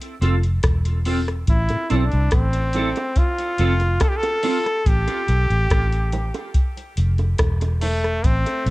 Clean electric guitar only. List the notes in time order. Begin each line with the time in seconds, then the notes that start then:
0.21 C4 F4 A4
1.06 C4 F4 A4
1.90 C4 E4 A4
2.55 muted clean electric guitar stroke
2.74 C4 E4 A4
3.59 C4 F4 A4
4.44 C4 F4 A4